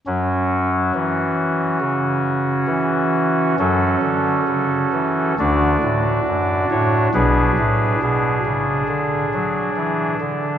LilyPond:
<<
  \new Staff \with { instrumentName = "Pipe organ" } { \time 4/4 \key fis \minor \tempo 4 = 68 << { r1 | a'2 d''4. cis''8 | b'4 gis'2~ gis'8 r8 | } \\ { <cis' fis'>1 | <cis' fis'>2 <d' fis'>2 | <d' gis'>1 | } >> }
  \new Staff \with { instrumentName = "Pipe organ" } { \clef bass \time 4/4 \key fis \minor <fis, fis>4 e4 cis4 e4 | <fis, fis>8 d8 cis8 e8 <d, d>8 a,8 fis,8 a,8 | <b,, b,>8 a,8 b,8 cis8 d8 fis8 e8 d8 | }
>>